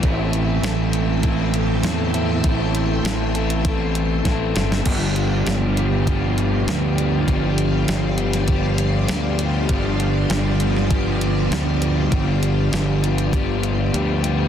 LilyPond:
<<
  \new Staff \with { instrumentName = "String machine" } { \time 4/4 \key g \mixolydian \tempo 4 = 99 <a' e'' g'' c'''>1~ | <a' e'' g'' c'''>1 | <g' d'' f'' c'''>1~ | <g' d'' f'' c'''>1~ |
<g' d'' f'' c'''>1~ | <g' d'' f'' c'''>1 | }
  \new Staff \with { instrumentName = "Overdriven electric guitar" } { \time 4/4 \key g \mixolydian <a, e c' e' a'>4 <e c' e' a'>8 <c' e' a'>8 <e c' e' a'>4 <e c' e' a'>8 <c' e' a'>8 | <a, e c' e' a'>4 <e c' e' a'>8 <c' e' a'>8 <e c' e' a'>4 <e c' e' a'>8 <c' e' a'>8 | <g, d f g b g'>4 <f g b g'>8 <f g b g'>8 <f g b g'>4 <f g b g'>8 <f g b g'>8 | <g, d f g b g'>4 <f g b g'>8 <f g b g'>8 <f g b g'>4 <f g b g'>8 <f g b g'>8 |
<g, d f g b g'>4 <f g b g'>8 <f g b g'>8 <f g b g'>4 <f g b g'>8 <f g b g'>8 | <g, d f g b g'>4 <f g b g'>8 <f g b g'>8 <f g b g'>4 <f g b g'>8 <f g b g'>8 | }
  \new Staff \with { instrumentName = "Overdriven electric guitar" } { \clef bass \time 4/4 \key g \mixolydian <a, e a c' e'>1~ | <a, e a c' e'>1 | <g, d f b d'>1~ | <g, d f b d'>1 |
<g, d f b d'>1~ | <g, d f b d'>1 | }
  \new Staff \with { instrumentName = "Fingered electric bass" } { \clef bass \time 4/4 \key g \mixolydian a,,4 a,,2 e,4 | a,,4 a,,2 a,,8 g,,8 | g,,4 g,,2 d,4 | g,,4 g,,2 d,4 |
g,,4 g,,2 d,4 | g,,4 g,,2 d,4 | }
  \new DrumStaff \with { instrumentName = "Drums" } \drummode { \time 4/4 <hh bd>8 hh8 <hh sn>8 hh8 <hh bd>8 hh8 <hh sn>8 hh8 | <hh bd>8 hh8 <hh sn>8 hh16 hh16 <hh bd>8 hh8 <hh bd sn>8 <hh sn>16 sn16 | <cymc bd>8 hh8 <hh sn>8 hh8 <hh bd>8 hh8 <hh sn>8 hh8 | <hh bd>8 hh8 <hh sn>8 hh16 <hh sn>16 <hh bd>8 hh8 <hh sn>8 hh8 |
<hh bd>8 hh8 <hh sn>8 hh16 sn16 <hh bd>8 hh8 <hh sn>8 hh8 | <hh bd>8 hh8 <hh sn>8 hh16 hh16 <hh bd>8 hh8 hh8 hh8 | }
>>